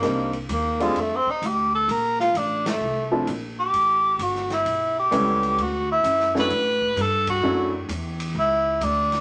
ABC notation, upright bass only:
X:1
M:4/4
L:1/8
Q:"Swing" 1/4=130
K:D
V:1 name="Upright bass" clef=bass
=C,,2 _E,,2 =F,, z D,,2 | _B,,,2 A,,,2 =C,,2 B,,,2 | A,,,2 G,,,2 B,,,2 C,,2 | D,,2 F,,2 A,,2 G,,2 |
F,,2 E,,2 C,,2 D,,2 |]